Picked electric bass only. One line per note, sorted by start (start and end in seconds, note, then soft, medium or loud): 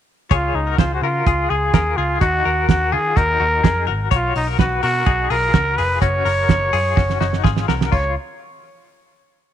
0.31 0.50 C#2 loud
0.54 0.74 C#2 medium
0.78 0.98 C#2 medium
1.02 1.22 C#3 medium
1.27 1.46 C#2 medium
1.50 1.70 C#2 medium
1.74 1.93 D#2 medium
1.98 2.17 C#2 medium
2.21 2.41 D#2 loud
2.45 2.65 D#2 medium
2.69 2.95 D#2 medium
2.93 3.12 D#3 medium
3.17 3.36 D#2 medium
3.40 3.60 D#2 medium
3.64 3.89 F2 medium
3.88 4.07 G#1 medium
4.11 4.31 B1 medium
4.36 4.55 B1 medium
4.59 4.78 B1 medium
4.83 5.03 B2 medium
5.07 5.26 B1 medium
5.30 5.50 B1 medium
5.54 5.79 C#2 medium
5.78 5.98 F1 medium
6.02 6.21 F#1 medium
6.25 6.45 F#1 medium
6.49 6.69 F#1 medium
6.73 6.93 F#2 medium
6.97 7.17 F#1 medium
7.21 7.40 F#1 medium
7.44 7.64 G#1 medium
7.68 7.88 C2 medium
7.93 8.15 C#2 medium